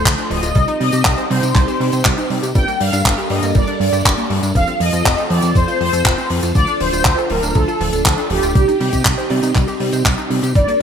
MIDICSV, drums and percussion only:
0, 0, Header, 1, 2, 480
1, 0, Start_track
1, 0, Tempo, 500000
1, 532, Time_signature, 4, 2, 24, 8
1, 10387, End_track
2, 0, Start_track
2, 0, Title_t, "Drums"
2, 53, Note_on_c, 9, 36, 124
2, 56, Note_on_c, 9, 54, 46
2, 59, Note_on_c, 9, 39, 127
2, 149, Note_off_c, 9, 36, 0
2, 152, Note_off_c, 9, 54, 0
2, 155, Note_off_c, 9, 39, 0
2, 171, Note_on_c, 9, 54, 29
2, 176, Note_on_c, 9, 42, 41
2, 267, Note_off_c, 9, 54, 0
2, 272, Note_off_c, 9, 42, 0
2, 296, Note_on_c, 9, 46, 110
2, 392, Note_off_c, 9, 46, 0
2, 410, Note_on_c, 9, 54, 55
2, 412, Note_on_c, 9, 42, 65
2, 506, Note_off_c, 9, 54, 0
2, 508, Note_off_c, 9, 42, 0
2, 527, Note_on_c, 9, 54, 48
2, 533, Note_on_c, 9, 36, 123
2, 534, Note_on_c, 9, 42, 59
2, 623, Note_off_c, 9, 54, 0
2, 629, Note_off_c, 9, 36, 0
2, 630, Note_off_c, 9, 42, 0
2, 651, Note_on_c, 9, 42, 49
2, 653, Note_on_c, 9, 54, 32
2, 747, Note_off_c, 9, 42, 0
2, 749, Note_off_c, 9, 54, 0
2, 774, Note_on_c, 9, 46, 112
2, 870, Note_off_c, 9, 46, 0
2, 886, Note_on_c, 9, 54, 64
2, 890, Note_on_c, 9, 42, 63
2, 982, Note_off_c, 9, 54, 0
2, 986, Note_off_c, 9, 42, 0
2, 1008, Note_on_c, 9, 39, 120
2, 1012, Note_on_c, 9, 36, 127
2, 1013, Note_on_c, 9, 54, 51
2, 1015, Note_on_c, 9, 42, 70
2, 1104, Note_off_c, 9, 39, 0
2, 1108, Note_off_c, 9, 36, 0
2, 1109, Note_off_c, 9, 54, 0
2, 1111, Note_off_c, 9, 42, 0
2, 1132, Note_on_c, 9, 42, 43
2, 1134, Note_on_c, 9, 54, 31
2, 1228, Note_off_c, 9, 42, 0
2, 1230, Note_off_c, 9, 54, 0
2, 1254, Note_on_c, 9, 46, 106
2, 1350, Note_off_c, 9, 46, 0
2, 1372, Note_on_c, 9, 54, 62
2, 1373, Note_on_c, 9, 42, 68
2, 1468, Note_off_c, 9, 54, 0
2, 1469, Note_off_c, 9, 42, 0
2, 1487, Note_on_c, 9, 42, 59
2, 1492, Note_on_c, 9, 36, 121
2, 1492, Note_on_c, 9, 39, 54
2, 1497, Note_on_c, 9, 54, 47
2, 1583, Note_off_c, 9, 42, 0
2, 1588, Note_off_c, 9, 36, 0
2, 1588, Note_off_c, 9, 39, 0
2, 1593, Note_off_c, 9, 54, 0
2, 1613, Note_on_c, 9, 42, 47
2, 1614, Note_on_c, 9, 54, 28
2, 1709, Note_off_c, 9, 42, 0
2, 1710, Note_off_c, 9, 54, 0
2, 1737, Note_on_c, 9, 46, 101
2, 1833, Note_off_c, 9, 46, 0
2, 1844, Note_on_c, 9, 42, 60
2, 1852, Note_on_c, 9, 54, 52
2, 1940, Note_off_c, 9, 42, 0
2, 1948, Note_off_c, 9, 54, 0
2, 1967, Note_on_c, 9, 39, 127
2, 1971, Note_on_c, 9, 54, 52
2, 1972, Note_on_c, 9, 36, 123
2, 2063, Note_off_c, 9, 39, 0
2, 2067, Note_off_c, 9, 54, 0
2, 2068, Note_off_c, 9, 36, 0
2, 2089, Note_on_c, 9, 42, 45
2, 2096, Note_on_c, 9, 54, 27
2, 2185, Note_off_c, 9, 42, 0
2, 2192, Note_off_c, 9, 54, 0
2, 2211, Note_on_c, 9, 46, 104
2, 2307, Note_off_c, 9, 46, 0
2, 2335, Note_on_c, 9, 42, 73
2, 2338, Note_on_c, 9, 54, 66
2, 2431, Note_off_c, 9, 42, 0
2, 2434, Note_off_c, 9, 54, 0
2, 2449, Note_on_c, 9, 54, 53
2, 2451, Note_on_c, 9, 36, 120
2, 2452, Note_on_c, 9, 42, 64
2, 2545, Note_off_c, 9, 54, 0
2, 2547, Note_off_c, 9, 36, 0
2, 2548, Note_off_c, 9, 42, 0
2, 2572, Note_on_c, 9, 54, 29
2, 2577, Note_on_c, 9, 42, 46
2, 2668, Note_off_c, 9, 54, 0
2, 2673, Note_off_c, 9, 42, 0
2, 2692, Note_on_c, 9, 46, 115
2, 2788, Note_off_c, 9, 46, 0
2, 2812, Note_on_c, 9, 42, 73
2, 2813, Note_on_c, 9, 54, 64
2, 2908, Note_off_c, 9, 42, 0
2, 2909, Note_off_c, 9, 54, 0
2, 2931, Note_on_c, 9, 36, 120
2, 2937, Note_on_c, 9, 39, 127
2, 3027, Note_off_c, 9, 36, 0
2, 3033, Note_off_c, 9, 39, 0
2, 3047, Note_on_c, 9, 54, 30
2, 3055, Note_on_c, 9, 42, 46
2, 3143, Note_off_c, 9, 54, 0
2, 3151, Note_off_c, 9, 42, 0
2, 3165, Note_on_c, 9, 46, 105
2, 3261, Note_off_c, 9, 46, 0
2, 3289, Note_on_c, 9, 54, 58
2, 3290, Note_on_c, 9, 42, 69
2, 3385, Note_off_c, 9, 54, 0
2, 3386, Note_off_c, 9, 42, 0
2, 3407, Note_on_c, 9, 42, 59
2, 3407, Note_on_c, 9, 54, 52
2, 3411, Note_on_c, 9, 36, 121
2, 3503, Note_off_c, 9, 42, 0
2, 3503, Note_off_c, 9, 54, 0
2, 3507, Note_off_c, 9, 36, 0
2, 3526, Note_on_c, 9, 54, 30
2, 3527, Note_on_c, 9, 42, 46
2, 3622, Note_off_c, 9, 54, 0
2, 3623, Note_off_c, 9, 42, 0
2, 3655, Note_on_c, 9, 46, 109
2, 3751, Note_off_c, 9, 46, 0
2, 3771, Note_on_c, 9, 42, 57
2, 3775, Note_on_c, 9, 54, 54
2, 3867, Note_off_c, 9, 42, 0
2, 3871, Note_off_c, 9, 54, 0
2, 3891, Note_on_c, 9, 36, 116
2, 3892, Note_on_c, 9, 54, 55
2, 3899, Note_on_c, 9, 39, 122
2, 3899, Note_on_c, 9, 42, 60
2, 3987, Note_off_c, 9, 36, 0
2, 3988, Note_off_c, 9, 54, 0
2, 3995, Note_off_c, 9, 39, 0
2, 3995, Note_off_c, 9, 42, 0
2, 4007, Note_on_c, 9, 42, 45
2, 4015, Note_on_c, 9, 54, 32
2, 4103, Note_off_c, 9, 42, 0
2, 4111, Note_off_c, 9, 54, 0
2, 4130, Note_on_c, 9, 46, 103
2, 4226, Note_off_c, 9, 46, 0
2, 4250, Note_on_c, 9, 42, 69
2, 4255, Note_on_c, 9, 54, 64
2, 4346, Note_off_c, 9, 42, 0
2, 4351, Note_off_c, 9, 54, 0
2, 4371, Note_on_c, 9, 36, 115
2, 4373, Note_on_c, 9, 42, 65
2, 4375, Note_on_c, 9, 54, 51
2, 4467, Note_off_c, 9, 36, 0
2, 4469, Note_off_c, 9, 42, 0
2, 4471, Note_off_c, 9, 54, 0
2, 4486, Note_on_c, 9, 54, 30
2, 4488, Note_on_c, 9, 42, 42
2, 4582, Note_off_c, 9, 54, 0
2, 4584, Note_off_c, 9, 42, 0
2, 4613, Note_on_c, 9, 46, 115
2, 4709, Note_off_c, 9, 46, 0
2, 4732, Note_on_c, 9, 42, 65
2, 4733, Note_on_c, 9, 54, 65
2, 4828, Note_off_c, 9, 42, 0
2, 4829, Note_off_c, 9, 54, 0
2, 4851, Note_on_c, 9, 36, 118
2, 4851, Note_on_c, 9, 54, 57
2, 4852, Note_on_c, 9, 42, 67
2, 4860, Note_on_c, 9, 39, 125
2, 4947, Note_off_c, 9, 36, 0
2, 4947, Note_off_c, 9, 54, 0
2, 4948, Note_off_c, 9, 42, 0
2, 4956, Note_off_c, 9, 39, 0
2, 4972, Note_on_c, 9, 54, 29
2, 4974, Note_on_c, 9, 42, 44
2, 5068, Note_off_c, 9, 54, 0
2, 5070, Note_off_c, 9, 42, 0
2, 5088, Note_on_c, 9, 46, 106
2, 5184, Note_off_c, 9, 46, 0
2, 5207, Note_on_c, 9, 54, 68
2, 5215, Note_on_c, 9, 42, 70
2, 5303, Note_off_c, 9, 54, 0
2, 5311, Note_off_c, 9, 42, 0
2, 5331, Note_on_c, 9, 36, 117
2, 5334, Note_on_c, 9, 42, 72
2, 5340, Note_on_c, 9, 54, 55
2, 5427, Note_off_c, 9, 36, 0
2, 5430, Note_off_c, 9, 42, 0
2, 5436, Note_off_c, 9, 54, 0
2, 5454, Note_on_c, 9, 54, 35
2, 5455, Note_on_c, 9, 42, 44
2, 5550, Note_off_c, 9, 54, 0
2, 5551, Note_off_c, 9, 42, 0
2, 5576, Note_on_c, 9, 46, 104
2, 5672, Note_off_c, 9, 46, 0
2, 5694, Note_on_c, 9, 42, 64
2, 5695, Note_on_c, 9, 54, 56
2, 5790, Note_off_c, 9, 42, 0
2, 5791, Note_off_c, 9, 54, 0
2, 5812, Note_on_c, 9, 36, 115
2, 5815, Note_on_c, 9, 39, 124
2, 5908, Note_off_c, 9, 36, 0
2, 5911, Note_off_c, 9, 39, 0
2, 5933, Note_on_c, 9, 54, 32
2, 5934, Note_on_c, 9, 42, 43
2, 6029, Note_off_c, 9, 54, 0
2, 6030, Note_off_c, 9, 42, 0
2, 6046, Note_on_c, 9, 46, 121
2, 6142, Note_off_c, 9, 46, 0
2, 6171, Note_on_c, 9, 42, 65
2, 6171, Note_on_c, 9, 54, 65
2, 6267, Note_off_c, 9, 42, 0
2, 6267, Note_off_c, 9, 54, 0
2, 6288, Note_on_c, 9, 54, 54
2, 6292, Note_on_c, 9, 36, 115
2, 6297, Note_on_c, 9, 42, 69
2, 6384, Note_off_c, 9, 54, 0
2, 6388, Note_off_c, 9, 36, 0
2, 6393, Note_off_c, 9, 42, 0
2, 6402, Note_on_c, 9, 42, 48
2, 6415, Note_on_c, 9, 54, 30
2, 6498, Note_off_c, 9, 42, 0
2, 6511, Note_off_c, 9, 54, 0
2, 6532, Note_on_c, 9, 46, 120
2, 6628, Note_off_c, 9, 46, 0
2, 6648, Note_on_c, 9, 42, 74
2, 6655, Note_on_c, 9, 54, 61
2, 6744, Note_off_c, 9, 42, 0
2, 6751, Note_off_c, 9, 54, 0
2, 6766, Note_on_c, 9, 42, 69
2, 6769, Note_on_c, 9, 39, 114
2, 6772, Note_on_c, 9, 36, 118
2, 6862, Note_off_c, 9, 42, 0
2, 6865, Note_off_c, 9, 39, 0
2, 6868, Note_off_c, 9, 36, 0
2, 6888, Note_on_c, 9, 54, 32
2, 6896, Note_on_c, 9, 42, 42
2, 6984, Note_off_c, 9, 54, 0
2, 6992, Note_off_c, 9, 42, 0
2, 7005, Note_on_c, 9, 46, 110
2, 7101, Note_off_c, 9, 46, 0
2, 7128, Note_on_c, 9, 42, 70
2, 7134, Note_on_c, 9, 54, 63
2, 7224, Note_off_c, 9, 42, 0
2, 7230, Note_off_c, 9, 54, 0
2, 7246, Note_on_c, 9, 54, 47
2, 7247, Note_on_c, 9, 42, 70
2, 7252, Note_on_c, 9, 36, 114
2, 7342, Note_off_c, 9, 54, 0
2, 7343, Note_off_c, 9, 42, 0
2, 7348, Note_off_c, 9, 36, 0
2, 7376, Note_on_c, 9, 42, 42
2, 7378, Note_on_c, 9, 54, 31
2, 7472, Note_off_c, 9, 42, 0
2, 7474, Note_off_c, 9, 54, 0
2, 7495, Note_on_c, 9, 46, 114
2, 7591, Note_off_c, 9, 46, 0
2, 7610, Note_on_c, 9, 42, 66
2, 7614, Note_on_c, 9, 54, 56
2, 7706, Note_off_c, 9, 42, 0
2, 7710, Note_off_c, 9, 54, 0
2, 7732, Note_on_c, 9, 36, 111
2, 7732, Note_on_c, 9, 54, 52
2, 7735, Note_on_c, 9, 39, 119
2, 7828, Note_off_c, 9, 36, 0
2, 7828, Note_off_c, 9, 54, 0
2, 7831, Note_off_c, 9, 39, 0
2, 7850, Note_on_c, 9, 42, 42
2, 7851, Note_on_c, 9, 54, 32
2, 7946, Note_off_c, 9, 42, 0
2, 7947, Note_off_c, 9, 54, 0
2, 7967, Note_on_c, 9, 46, 111
2, 8063, Note_off_c, 9, 46, 0
2, 8089, Note_on_c, 9, 42, 70
2, 8093, Note_on_c, 9, 54, 68
2, 8185, Note_off_c, 9, 42, 0
2, 8189, Note_off_c, 9, 54, 0
2, 8210, Note_on_c, 9, 42, 69
2, 8212, Note_on_c, 9, 36, 120
2, 8217, Note_on_c, 9, 54, 46
2, 8306, Note_off_c, 9, 42, 0
2, 8308, Note_off_c, 9, 36, 0
2, 8313, Note_off_c, 9, 54, 0
2, 8337, Note_on_c, 9, 54, 29
2, 8338, Note_on_c, 9, 42, 44
2, 8433, Note_off_c, 9, 54, 0
2, 8434, Note_off_c, 9, 42, 0
2, 8453, Note_on_c, 9, 46, 109
2, 8549, Note_off_c, 9, 46, 0
2, 8569, Note_on_c, 9, 42, 65
2, 8572, Note_on_c, 9, 36, 59
2, 8572, Note_on_c, 9, 54, 58
2, 8665, Note_off_c, 9, 42, 0
2, 8668, Note_off_c, 9, 36, 0
2, 8668, Note_off_c, 9, 54, 0
2, 8689, Note_on_c, 9, 39, 122
2, 8692, Note_on_c, 9, 36, 117
2, 8785, Note_off_c, 9, 39, 0
2, 8788, Note_off_c, 9, 36, 0
2, 8810, Note_on_c, 9, 54, 28
2, 8815, Note_on_c, 9, 42, 49
2, 8906, Note_off_c, 9, 54, 0
2, 8911, Note_off_c, 9, 42, 0
2, 8928, Note_on_c, 9, 46, 111
2, 9024, Note_off_c, 9, 46, 0
2, 9051, Note_on_c, 9, 54, 54
2, 9057, Note_on_c, 9, 42, 72
2, 9147, Note_off_c, 9, 54, 0
2, 9153, Note_off_c, 9, 42, 0
2, 9171, Note_on_c, 9, 39, 50
2, 9172, Note_on_c, 9, 36, 117
2, 9175, Note_on_c, 9, 42, 73
2, 9175, Note_on_c, 9, 54, 43
2, 9267, Note_off_c, 9, 39, 0
2, 9268, Note_off_c, 9, 36, 0
2, 9271, Note_off_c, 9, 42, 0
2, 9271, Note_off_c, 9, 54, 0
2, 9289, Note_on_c, 9, 54, 29
2, 9291, Note_on_c, 9, 42, 46
2, 9385, Note_off_c, 9, 54, 0
2, 9387, Note_off_c, 9, 42, 0
2, 9409, Note_on_c, 9, 46, 106
2, 9505, Note_off_c, 9, 46, 0
2, 9527, Note_on_c, 9, 42, 68
2, 9534, Note_on_c, 9, 54, 54
2, 9623, Note_off_c, 9, 42, 0
2, 9630, Note_off_c, 9, 54, 0
2, 9651, Note_on_c, 9, 54, 52
2, 9652, Note_on_c, 9, 36, 115
2, 9655, Note_on_c, 9, 39, 102
2, 9747, Note_off_c, 9, 54, 0
2, 9748, Note_off_c, 9, 36, 0
2, 9751, Note_off_c, 9, 39, 0
2, 9768, Note_on_c, 9, 54, 31
2, 9773, Note_on_c, 9, 42, 47
2, 9864, Note_off_c, 9, 54, 0
2, 9869, Note_off_c, 9, 42, 0
2, 9894, Note_on_c, 9, 46, 106
2, 9990, Note_off_c, 9, 46, 0
2, 10016, Note_on_c, 9, 54, 55
2, 10018, Note_on_c, 9, 42, 72
2, 10112, Note_off_c, 9, 54, 0
2, 10114, Note_off_c, 9, 42, 0
2, 10132, Note_on_c, 9, 36, 121
2, 10134, Note_on_c, 9, 54, 46
2, 10138, Note_on_c, 9, 42, 65
2, 10228, Note_off_c, 9, 36, 0
2, 10230, Note_off_c, 9, 54, 0
2, 10234, Note_off_c, 9, 42, 0
2, 10256, Note_on_c, 9, 42, 50
2, 10256, Note_on_c, 9, 54, 29
2, 10352, Note_off_c, 9, 42, 0
2, 10352, Note_off_c, 9, 54, 0
2, 10387, End_track
0, 0, End_of_file